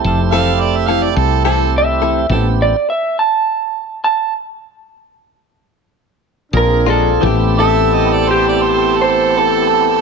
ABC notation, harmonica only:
X:1
M:4/4
L:1/16
Q:"Swing 16ths" 1/4=99
K:Am
V:1 name="Harmonica"
z2 f2 d e f d A2 A2 z4 | z16 | z16 | z2 e2 ^d =d c d c2 A6 |]